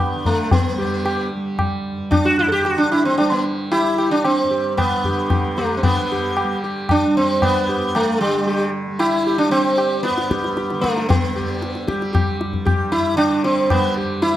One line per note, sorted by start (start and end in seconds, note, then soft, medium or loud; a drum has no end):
0.00 1.97 G2 medium
0.00 0.13 D3 medium
0.00 0.75 G3 medium
0.00 0.28 B3 medium
0.13 2.59 D3 medium
0.25 0.50 A3 medium
0.25 tabla ge soft
0.51 1.28 B3 medium
0.51 tabla tin medium
0.51 tabla ge medium
0.75 1.36 G3 medium
0.75 1.03 G4 soft
1.05 1.30 G4 soft
1.05 tabla na medium
1.36 3.20 G3 medium
1.59 tabla na medium
1.59 tabla ge medium
1.98 4.43 G2 medium
2.11 2.25 D4 medium
2.11 tabla na medium
2.11 tabla ge medium
2.25 2.38 F#4 medium
2.39 2.48 E4 medium
2.48 2.65 G4 medium
2.48 2.52 A4 medium
2.59 5.04 D3 medium
2.65 2.79 F#4 medium
2.65 tabla na medium
2.78 2.91 D4 medium
2.92 3.05 E4 medium
2.92 tabla na medium
3.05 3.17 C4 medium
3.17 3.82 G3 medium
3.17 3.31 D4 medium
3.17 tabla tin medium
3.32 3.44 B3 medium
3.71 4.11 E4 medium
3.71 3.96 G4 soft
3.71 tabla na medium
3.82 5.66 G3 medium
3.98 4.23 G4 soft
3.98 tabla na medium
4.11 4.24 D4 medium
4.24 4.77 C4 medium
4.24 tabla na medium
4.43 7.65 G2 medium
4.51 4.75 G4 soft
4.77 5.59 B3 medium
4.77 tabla na medium
4.77 tabla ge medium
5.04 5.83 D3 medium
5.04 5.29 G4 soft
5.04 tabla ge soft
5.30 5.55 G4 soft
5.30 tabla na medium
5.30 tabla ge medium
5.57 5.77 A3 medium
5.57 5.82 G4 soft
5.57 tabla te medium
5.66 6.44 G3 medium
5.77 5.83 C4 medium
5.83 8.27 D3 medium
5.83 6.59 B3 medium
5.83 tabla tin medium
5.83 tabla ge medium
6.12 6.35 G4 soft
6.37 6.61 G4 soft
6.37 tabla na medium
6.44 7.06 G3 medium
6.64 6.88 G4 soft
6.89 7.17 D4 medium
6.89 tabla na medium
6.89 tabla ge medium
7.06 8.87 G3 medium
7.17 7.42 C4 medium
7.42 7.96 B3 medium
7.42 tabla na medium
7.42 tabla ge medium
7.66 10.09 G2 medium
7.66 7.93 G4 soft
7.95 8.20 A3 medium
7.95 tabla na medium
8.21 8.70 G3 medium
8.21 tabla na medium
8.27 10.70 D3 medium
8.47 8.72 G4 soft
8.47 tabla tin medium
8.88 9.49 G3 medium
8.99 9.36 E4 medium
8.99 tabla na medium
9.27 9.51 G4 soft
9.38 9.51 D4 medium
9.49 11.31 G3 medium
9.49 10.03 C4 medium
9.49 tabla na medium
9.77 10.02 G4 soft
9.77 tabla na medium
10.03 10.85 B3 medium
10.03 tabla te medium
10.10 12.52 G2 medium
10.18 tabla te medium
10.30 10.55 G4 soft
10.30 tabla ke medium
10.44 tabla te medium
10.56 10.81 G4 soft
10.56 tabla te medium
10.70 13.12 D3 medium
10.70 tabla te medium
10.81 11.08 A3 medium
10.81 tabla ke medium
10.97 tabla te medium
11.09 11.84 B3 medium
11.09 tabla tin loud
11.09 tabla ge medium
11.31 11.92 G3 medium
11.36 11.60 G4 soft
11.62 tabla te medium
11.75 tabla te medium
11.87 12.12 G4 soft
11.87 tabla ke medium
11.92 13.73 G3 medium
12.02 tabla te medium
12.13 12.38 G4 soft
12.13 tabla na medium
12.13 tabla ge medium
12.41 tabla te medium
12.52 14.37 G2 medium
12.52 tabla ge medium
12.65 12.90 G4 soft
12.65 tabla na medium
12.65 tabla ge medium
12.92 13.17 E4 medium
12.92 tabla te medium
13.12 14.37 D3 medium
13.17 13.44 D4 medium
13.17 tabla na medium
13.44 13.71 C4 medium
13.44 tabla te medium
13.70 14.33 G3 medium
13.70 13.95 B3 medium
13.70 tabla na medium
13.70 tabla ge medium
13.97 14.21 G4 soft
14.22 14.37 E4 loud
14.22 tabla te medium
14.33 14.37 G3 medium